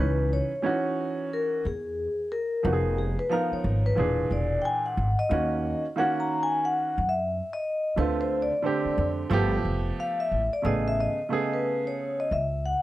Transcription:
Already playing: C#2 E3 C#4
0.00 D#4 B4
0.33 C#5
0.62 E3 C#4 D#4 F#4
1.33 A#4
1.65 E2 G#4
2.32 A#4
2.63 F1 F3 B3 D#4 F#4
2.73 G#4
2.98 G#4
3.19 B4
3.29 F3 B3 D#4 A#4 F5
3.52 C#5, muted upright bass stroke
3.64 G#1
3.86 B4
3.95 E1 A#2 E3 D4 G#4
4.31 E1 D5
4.62 G5 G#5
4.86 F#5
4.97 G#1
5.19 D#5
5.29 D#2 D#3 A#3 C#4 F#4
5.96 D#3 A#3 C#4 F#4 F#5
6.20 A#5
6.43 G#5
6.65 F#5
6.98 F#2
7.09 E5
7.53 D#5
7.96 D2 D3 A3 C4 F4 B4
8.21 C5
8.42 D5
8.62 D3 A3 C4 G4
8.85 muted upright bass stroke
8.98 F2
9.30 G1 F3 A3 B3 G4
9.65 F1
10.00 F5
10.20 E5
10.32 A1
10.53 D5
10.62 A1 C#3 A3 B3 G#4 D#5
10.88 E5
11.01 D#5
11.29 C#3 A3 B3 G#4
11.54 B4
11.87 C#5
12.20 D#5
12.31 C#2 E5
12.66 F#5

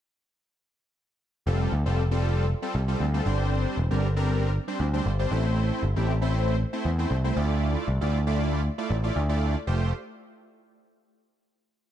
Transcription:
1.47 F1 G3 C4 F4 A4
1.72 D2
1.86 F1 G3 C4 F4 A4
2.11 G3 C4 F4 A4
2.62 G3 C4 F4 A4
2.75 C2
2.88 G3 C4 F4 A4
3.00 D2
3.14 G3 C4 F4 A4
3.26 G1 G3 C4 D4 C5
3.77 E1
3.91 G1 G3 C4 D4 A#4
4.16 G3 C4 D4 A#4
4.68 G3 C4 D4 C5
4.80 D2
4.93 G3 C4 D4 C5
5.06 G1
5.19 G3 C4 D4 C5
5.31 A1 A3 C4 E4 C5
5.83 G1
5.96 A1 A3 C4 E4 G4
6.22 A3 C4 E4 C5
6.73 A3 C4 E4 C5
6.85 E2
6.99 A3 C4 E4 C5
7.11 C2
7.24 A3 C4 E4 C5
7.36 D2 A3 E4 F4 D5
7.88 C2
8.01 D2 A3 E4 F4 D5
8.27 A3 E4 F4 D5
8.78 A3 E4 F4 D5
8.90 A1
9.04 A3 E4 F4 D5
9.16 D2
9.29 A3 E4 F4 D5
9.67 F1 A3 F4 G4 C5

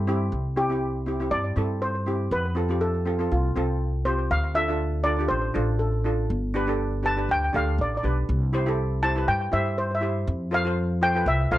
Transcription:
Already playing: G2
0.07 C4 E4 G4
0.32 C2
0.56 C4 E4 G4
0.70 C4 E4 G4
1.06 C4 E4 G4
1.20 C4 E4 G4
1.31 G2 D5
1.56 G2 C4 E4 A4
1.82 C5
2.06 C4 E4 G4
2.31 F2 B4
2.55 C4 F4 A4
2.69 C4 F4 G4
2.81 A4
3.06 C4 F4 A4
3.19 C4 F4 A4
3.32 C2 F4
3.56 C2 C4 F4 A4
4.05 C4 F4 G4 C5
4.31 D2 F5
4.55 D4 F4 A4 E5
4.68 D4 F4 A4
5.04 D4 F4 A4 D5
5.19 D4 F4 G4
5.28 A1 C5
5.54 A1 D4 F4 A4
5.79 A4
6.04 D4 F4 A4
6.30 G1
6.54 D4 G4 B4
6.67 D4 G4 A4
7.03 D4 G4 B4 A5
7.17 D4 G4 B4
7.29 D2 G5
7.53 D2 D4 G4 A4 F5
7.78 A1 D5
7.97 D5
8.03 B1 D4 G4 B4
8.29 C2
8.53 E4 G4 C5
8.66 E4 G4 A4
9.02 E4 G4 C5 A5
9.16 E4 G4 B4
9.28 G2 G5
9.52 G2 E4 G4 C5 E5
9.78 C5
9.95 E5
10.01 E4 G4 C5
10.27 F2
10.51 F4 A4 C5 F5
10.65 F4 A4 C5
11.01 F4 A4 C5 G5
11.15 F4 A4 B4
11.26 C2 E5
11.51 C2 F4 A4 C5 F5

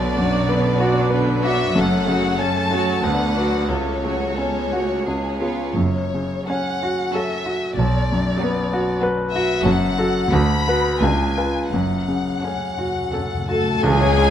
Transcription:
Already playing: B1 B2 D3 B3 D4 B4 D5
0.16 F#2 F#3 D4 F#4 D5
0.48 D3 B3 D4 B4
0.79 F#3 D4 F#4 D5
1.10 D3 B3 D4 B4
1.43 F#3 D4 F#4 D5 E5
1.74 F#1 F#2 A3 C#4 A4 F#5
2.05 C#3 F#3 A3 F#4 C#5
2.38 A3 C#4 A4 A5
2.71 F#3 A3 F#4 C#5
3.02 D2 D3 B3 D4 B4 F#5
3.35 F#3 D4 F#4 B4 D5
3.68 C#2 A3 C#4 A4 C#5
4.03 C#3 F#3 A3 F#4 C#5
4.35 B3 C#4 A4
4.70 A3 F#4 C#5
5.05 C#2 G#3 G#4
5.39 B3 F4 G#4 B4 C#5
5.75 F#1 F#2 C#5
6.14 C#3
6.47 F#3 C#4 F#4 A4 F#5
6.83 F#4
7.12 F#3 C#4 F#4 A4 E5
7.46 F#4
7.76 B1 B2 D5
8.12 F#2
8.39 F#3 B3 F#4 B4
8.43 B3
8.73 F#4
9.01 F#3 B3 F#4 B4
9.32 F#4 E5
9.62 F#1 F#2 F#3 C#4 F#4 A4 F#5
9.98 F#4 A4
10.32 D2 F#3 D4 F#4 B4 B5
10.68 F#4 B4
11.00 C#2 G#3 D4 F4 B4 G#5
11.38 F4 B4
11.71 F#1 F#2 F#5
12.08 C#3
12.14 F#2
12.22 F#2
12.30 F#2
12.38 F#2
12.42 F#2 A3 C#4 F#4 A4
12.55 F#2
12.70 F#2
12.77 F#2 F#4
12.87 F#2
12.95 F#2
13.02 F#2
13.10 F#2 F#4 A4
13.14 F#2 A3 C#4
13.26 F#2
13.34 F#2
13.44 F#2
13.48 F#2 A3 F#4 A4 A5
13.60 F#2
13.68 F#2
13.76 F#2
13.83 C#2 C#3 E3 G#3 C#4 E4 G#4 G#5
14.01 C#5
14.17 C#4

